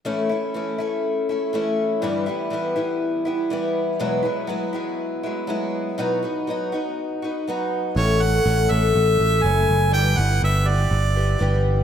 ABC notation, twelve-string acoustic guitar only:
X:1
M:4/4
L:1/8
Q:1/4=122
K:A
V:1 name="Twelve-string acoustic guitar"
[A,,E,A,CE] [A,CE] [E,A,CE] [A,CE]2 [A,CE] [E,A,CE]2 | [=G,,D,E,=G,B,E] [E,G,B,E] [E,G,B,E] [E,G,B,E]2 [E,G,B,E] [E,G,B,E]2 | [E,,B,,F,G,B,E] [F,G,B,E] [F,G,B,E] [F,G,B,E]2 [F,G,B,E] [F,G,B,E]2 | [B,,F,B,^DF] [B,DF] [F,B,DF] [B,DF]2 [B,DF] [F,B,DF]2 |
[A,,E,A,CA] [A,CA] [E,A,CA] [A,CA]2 [A,CA] [E,A,CA]2 | [=G,,D,E,=G,B,=G] [E,G,B,G] [E,G,B,G] [E,G,B,G]2 [E,G,B,G] [E,G,B,G]2 |]